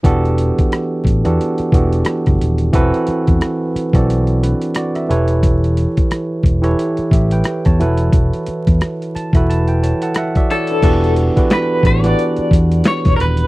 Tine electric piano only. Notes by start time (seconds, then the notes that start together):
0.03 E3 B3 D4 F#4 G4 A4
1.24 E3 B3 D4 F#4 G4 A4
1.73 E3 B3 D4 F#4 G4 A4
2.73 E3 C4 F#4 A4 B4
3.93 E3 C4 F#4 A4 D5
4.43 D4 B4
4.76 F#4 D5
4.95 E5
5.09 E3 E4 G4 A4 B4 C#5
6.62 E3 E4 G4 A4 B4 C#5
7.12 G4 E5
7.32 B4 G5
7.65 C#5 A5
7.79 E3 E4 F#4 A4 B4
9.15 A5
9.34 E3 E4 F#4 A4 B4 B5
9.50 A5
9.68 G5
9.83 C#5 A5
10.03 A4 F#5 A5
10.18 E5 F#5
10.37 F#4 D5 E5
10.51 E4 C#5 D5
10.71 D4 B4
10.82 E3 B3 D4 F#4 G4 A4
11.35 E3 B3 D4 F#4 G4 B4
12.03 E3 B3 D4 F#4 G4 B4